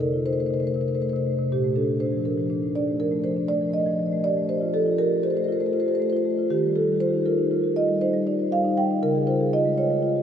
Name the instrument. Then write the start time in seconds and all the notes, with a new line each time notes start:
marimba
Already playing: F2
0.00 D#4 A#4
0.13 F4
0.26 D#4 C5
0.33 C5
0.38 A3 C5
0.46 C3 C5
0.54 C5
0.60 A3 C5
0.67 C5
0.74 C3 C5
0.81 C5
0.88 D#4 C5
0.95 C5
1.01 A3 C5
1.09 C5
1.13 C3 C5
1.26 A3
1.39 C3
1.52 A#2 G4
1.64 A3
1.76 D4 A4
1.88 A3
2.00 D4 C5
2.12 F3
2.25 D4 A#4
2.38 F3
2.50 D4
2.63 D#4
2.75 D4 D5
2.88 A3
3.00 F3 A#4
3.11 A3
3.24 F3 C5
3.36 D4
3.48 A3 D5
3.61 F3
3.74 A3 D#5
3.86 F3
3.99 F3
4.12 A3
4.24 G4 D5
4.37 A3
4.49 G4 C5
4.61 F4
4.74 G4 A4
4.86 F4
4.98 G4 A#4
5.11 A4
5.23 G4 C5
5.30 C5
5.35 A3 C5
5.44 C5
5.48 F4
5.52 C5
5.60 A3 C5
5.66 C5
5.73 F4 C5
5.80 C5
5.86 G4 C5
5.95 C5
5.99 A3 C5
6.10 F4 C5
6.17 C5
6.25 A3
6.38 F4
6.50 D#3 G4
6.63 G3
6.75 F4 A4
6.88 G3
7.00 F4 C5
7.14 D#4
7.26 F4 A#4
7.38 D#4
7.51 F4
7.64 G4
7.76 F4 D#5
7.89 G3
8.01 D#4 C5
8.14 G3
8.27 D#4 D5
8.39 F4
8.52 G3 F5
8.65 D#4
8.77 G3 G5
8.91 D#4
9.03 C#3 A#4
9.15 G#4
9.27 F4 C5
9.40 G#4
9.53 F4 D#5
9.65 G#3
9.78 F4 C#5
9.91 G#3
10.02 F4
10.16 G4